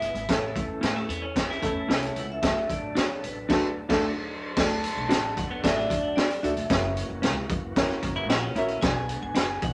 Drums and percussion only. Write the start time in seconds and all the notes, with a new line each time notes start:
0.02 closed hi-hat
0.15 closed hi-hat
0.29 kick, snare, closed hi-hat
0.56 kick, closed hi-hat
0.83 snare, closed hi-hat
1.10 closed hi-hat
1.36 kick, snare, closed hi-hat
1.51 snare
1.63 kick, closed hi-hat
1.90 snare, closed hi-hat
2.02 closed hi-hat
2.16 closed hi-hat
2.42 kick, snare, closed hi-hat
2.70 kick, closed hi-hat
2.96 snare, closed hi-hat
3.24 closed hi-hat
3.50 kick, snare, crash
3.90 kick, snare, crash
4.56 kick, snare, crash
4.84 closed hi-hat
5.10 snare, closed hi-hat
5.37 kick, closed hi-hat
5.64 kick, snare, closed hi-hat
5.79 snare
5.90 kick, closed hi-hat
6.18 snare, closed hi-hat
6.30 closed hi-hat
6.44 closed hi-hat
6.57 closed hi-hat
6.70 kick, snare, closed hi-hat
6.97 closed hi-hat
7.23 snare, closed hi-hat
7.50 kick, closed hi-hat
7.76 kick, snare, closed hi-hat
7.90 snare
8.03 kick, closed hi-hat
8.30 snare, closed hi-hat
8.56 closed hi-hat
8.68 closed hi-hat
8.82 kick, snare, closed hi-hat
9.09 closed hi-hat
9.35 snare, closed hi-hat
9.62 kick, closed hi-hat